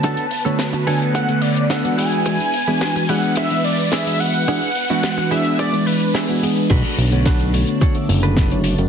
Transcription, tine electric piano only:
\new Staff \with { instrumentName = "Tine electric piano" } { \time 4/4 \key b \dorian \tempo 4 = 108 <d a b cis' fis'>16 r8 <d a b fis' cis''>8. <d a b fis' cis''>8. <d a b a' cis''>4 <e gis b d' fis'>8. | <e gis b d' fis'>16 r8 <e gis b d' fis'>8. <e gis b d' fis'>8. <e gis b d' b'>4 <e gis b d' fis'>8. | <e b d' fis'>16 r8 <e gis b d' fis'>8. <e gis b d' fis'>8. <e gis b d' b'>4 <e gis b d' fis'>16 <e gis b d' gis'>8 | r8. <d a b fis' cis''>8. <d a b fis' cis''>8. <d a b a' cis''>4 <d a b fis' cis''>8. | }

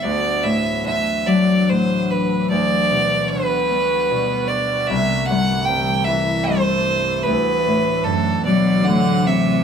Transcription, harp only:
\new Staff \with { instrumentName = "Harp" } { \clef bass \time 3/4 \key d \mixolydian \tempo 4 = 75 d,8 a,8 d8 fis8 a,4 | d,8 b,8 d8 b8 b,4 | c,8 g,8 c8 e8 g,4 | d,8 a,8 d8 fis8 a,4 | }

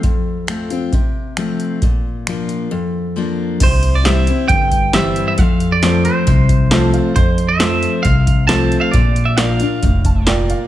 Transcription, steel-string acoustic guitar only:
\new Staff \with { instrumentName = "Steel-string acoustic guitar" } { \time 4/4 \key f \major \tempo 4 = 135 << { r4 <f a c' f'>8 <c' f'>8 r4 <f a c' f'>4 | r4 <f bes d' f'>4 r4 <f bes d' f'>4 | r4 <e g c' e'>8 <c' e'>8 r4 <e g c' e'>4 | r4 <f a c' f'>4 r4 <f a c' f'>4 |
r4 <f a c' f'>4 r4 <f a c' f'>4 | r4 <f bes d' f'>8 <d' f'>8 r2 | } \\ { f,2 c2 | bes,2 f,2 | c2 g,2 | f,2 c2 |
f,2 c2 | bes,2 a,4 bes,4 | } >> }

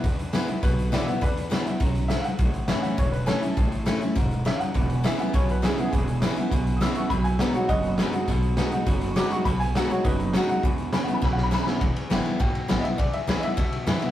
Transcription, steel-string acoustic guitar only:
\new Staff \with { instrumentName = "Steel-string acoustic guitar" } { \time 4/4 \key e \major \tempo 4 = 204 << { r4 <e gis b e'>8 <b e'>8 r4 <e gis b e'>8 <b e'>8 | r4 <e gis b e'>8 <b e'>8 r2 | r4 <e a cis' e'>4 r4 <e a cis' e'>8 <cis' e'>8 | r4 <e a cis' e'>8 <cis' e'>8 r2 |
r4 <e gis b e'>8 <b e'>8 r4 <e gis b e'>8 <b e'>8 | r4 <e gis b e'>8 <b e'>8 r4 <e gis b e'>8 <b e'>8 | r4 <fis b dis' fis'>8 <dis' fis'>8 r4 <fis b dis' fis'>8 <dis' fis'>8 | r4 <fis b dis' fis'>8 <dis' fis'>8 r4 <fis b dis' fis'>8 <dis' fis'>8 |
r4 <fis b dis' fis'>8 <dis' fis'>8 r4 <fis b dis' fis'>8 <dis' fis'>8 | r4 <e gis b e'>8 <b e'>8 r4 <e gis b e'>8 <b e'>8 | r4 <e gis b e'>4 r4 <e gis b e'>8 <b e'>8 | r4 <e gis b e'>8 <b e'>8 r4 <e gis b e'>8 <b e'>8 | } \\ { e,2 b,2 | e,2 fis,4 gis,4 | a,2 e,2 | a,2 gis,4 fis,4 |
e,2 b,2 | e,2 b,2 | b,2 fis,2 | b,2 fis,2 |
b,2 fis,2 | e,2 b,2 | e,2 b,2 | e,2 b,2 | } >> }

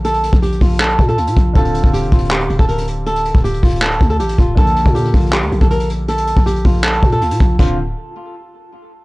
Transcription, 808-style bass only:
\new Staff \with { instrumentName = "808-style bass" } { \clef bass \time 4/4 \key d \minor \tempo 4 = 159 bes,,8. bes,,8. bes,,4 bes,8 d,16 bes,16 bes,,8 | d,,8. d,,8 f,,16 d,,4 d,,16 d,,4~ d,,16~ | d,,8. d,,8. d,,4 d,8 a,,8 d,,8 | bes,,8. bes,8. bes,,8. d,16 bes,,16 bes,,4~ bes,,16~ |
bes,,8. bes,,8. bes,,4 bes,8 d,16 bes,16 bes,,8 | d,,4 r2. | }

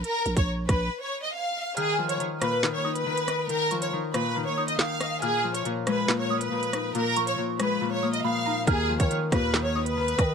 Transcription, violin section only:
\new Staff \with { instrumentName = "Violin section" } { \time 4/4 \key bes \phrygian \tempo 4 = 139 bes'8. des''16 r8 ces''8. des''8 ees''16 f''4 | aes'8. des''16 r8 ces''8. des''8 ces''4~ ces''16 | bes'8. des''16 r8 ces''8. des''8 ees''16 f''4 | aes'8. des''16 r8 ces''8. des''8 ces''4~ ces''16 |
bes'8. des''16 r8 ces''8. des''8 ees''16 f''4 | aes'8. des''16 r8 ces''8. des''8 ces''4~ ces''16 | }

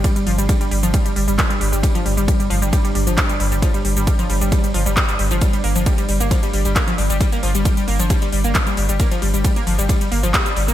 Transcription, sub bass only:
\new Staff \with { instrumentName = "Sub bass" } { \clef bass \time 4/4 \key g \minor \tempo 4 = 134 r8 g,,16 g,,16 r8 g,,16 g,,16 r8 g,,16 g,,16 r8 g,,16 g,,16 | r8 g,,16 g,,16 r8 g,,16 g,,16 r8 g,,16 g,,16 r8 g,,16 g,,16 | r8 g,,16 g,,16 r8 g,,16 g,,16 r8 g,,16 g,,16 r8 g,,16 g,,16 | r8 g,,16 g,,16 r8 g,,16 g,,16 r8 g,,16 g,,16 r8 g,,16 g,,16 |
r8 g,,16 g,,16 r8 g,,16 g,,16 r8 g,,16 g,,16 r8 g,,16 g,,16 | r8 g,,16 g,,16 r8 g,,16 g,,16 r8 g,,16 g,,16 r8 g,,16 g,,16 | }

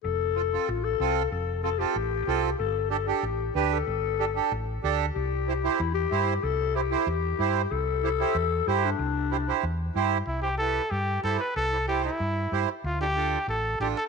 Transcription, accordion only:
\new Staff \with { instrumentName = "Accordion" } { \time 4/4 \key c \major \tempo 4 = 188 r4 <c' f' a'>8 <c' f' a'>8 r4 <c' f' a'>8 r8 | r4 <c' f' a'>8 <c' f' a'>8 r4 <c' f' a'>8 r8 | r4 <d' g' a'>8 <d' g' a'>8 r4 <d' g' b'>8 r8 | r4 <d' g' a'>8 <d' g' a'>8 r4 <d' g' a'>8 r8 |
r4 <e' g' c''>8 <e' g' c''>8 r4 <e' g' c''>8 r8 | r4 <e' g' c''>8 <e' g' c''>8 r4 <e' g' c''>8 r8 | r4 <e' g' c''>8 <e' g' c''>8 r4 <e' g' c''>8 r8 | r4 <e' g' c''>8 <e' g' c''>8 r4 <e' g' c''>8 r8 |
r8 <e' g' c''>8 <e' g' b'>8 r4. <e' g' c''>8 r8 | r8 <e' g' c''>8 <e' g' c''>8 r4. <e' g' c''>8 r8 | r8 <d' f' a'>8 <d' f' a'>8 r4. <d' f' a'>8 r8 | }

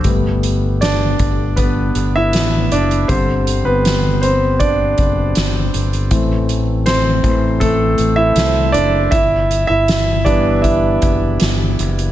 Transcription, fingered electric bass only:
\new Staff \with { instrumentName = "Fingered electric bass" } { \clef bass \time 4/4 \key g \major \tempo 4 = 79 g,,4. g,,4 g,,8 a,,8 fis,,8 | g,,8. g,,4.~ g,,16 fis,,8 g,,8 g,,8 | a,,4. a,,4 a,,8 c,8 fis,,8 | g,,8. g,,4.~ g,,16 fis,,8 g,,8 fis,,8 | }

